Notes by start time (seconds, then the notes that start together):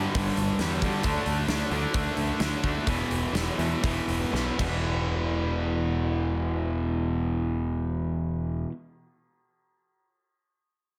Already playing: G2 D3 G3 D4
0.15 G1 G2 D3 G3, kick, open hi-hat
0.36 G1, open hi-hat
0.59 E2 G2 D3 G3, snare, open hi-hat
0.82 G2 D3 G3, kick, open hi-hat
1.03 D2 D3 A3 D4, kick, open hi-hat
1.26 D2, open hi-hat
1.48 D2 D3 A3 D4, snare, open hi-hat
1.71 D2 D3 A3 D4, open hi-hat
1.94 D2 D3 A3 D4, kick, open hi-hat
2.17 D2, open hi-hat
2.40 D2 D3 A3 D4, snare, open hi-hat
2.63 D2 D3 A3 D4, kick, open hi-hat
2.87 E1 E2 B2 E3, kick, open hi-hat
3.10 E1, open hi-hat
3.33 E1 E2 B2 E3, snare, open hi-hat
3.58 E2 B2 E3, open hi-hat
3.83 E1 E2 B2 E3, kick, open hi-hat
4.07 E1, open hi-hat
4.32 B1 E2 B2 E3, snare
4.58 E1 E2 B2 E3, kick, crash